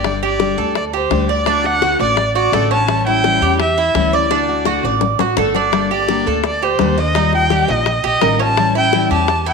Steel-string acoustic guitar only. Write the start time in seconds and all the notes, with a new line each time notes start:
0.05 D3 G3 D4 G4
0.23 G3 D4 G4
0.39 D3 G3 D4 G4
0.57 G3 D4 G4
0.75 muted steel-string acoustic guitar stroke
1.10 D3 G3 D4 G4
1.28 G3 D4 G4
1.46 D3 A3 D4 F#4
1.63 A3 D4 F#4
1.81 D3 A3 D4 F#4
1.99 A3 D4 F#4
2.17 muted steel-string acoustic guitar stroke
2.52 D3 A3 D4 F#4
2.70 A3 D4 F#4
2.87 E3 G3 C#4 E4
3.07 G3 C#4 E4
3.24 E3 G3 C#4 E4
3.41 G3 C#4 E4
3.59 muted steel-string acoustic guitar stroke
3.95 E3 G3 C#4 E4
4.13 G3 C#4 E4
4.30 D3 A3 D4 F#4
4.48 A3 D4 F#4
4.65 D3 A3 D4 F#4
4.83 A3 D4 F#4
5.01 muted steel-string acoustic guitar stroke
5.37 D3 A3 D4 F#4
5.54 A3 D4 F#4
5.72 D3 G3 A#3 D4 A4
5.91 A#3 D4 A4
6.08 D3 G3 A#3 D4 A4
6.26 A#3 D4 A4
6.44 muted steel-string acoustic guitar stroke
6.80 D3 G3 A#3 D4 A4
6.97 A#3 D4 A4
7.15 D#3 G3 D#4 F4
7.33 G3 D#4 F4
7.50 D#3 G3 D#4 F4
7.69 G3 D#4 F4
7.87 muted steel-string acoustic guitar stroke
8.21 D#3 G3 D#4 F4
8.39 G3 D#4 F4
8.57 E3 G3 C#4 E4
8.75 G3 C#4 E4
8.94 E3 G3 C#4 E4
9.11 G3 C#4 E4
9.29 muted steel-string acoustic guitar stroke